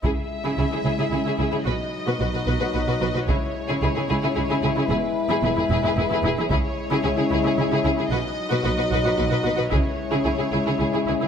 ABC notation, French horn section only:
X:1
M:3/4
L:1/8
Q:1/4=112
K:C#m
V:1 name="French horn section"
[G,E]6 | [F,D]6 | [G,E]6- | [G,E]6 |
[G,E]6 | [F,D]6 | [G,E]6 |]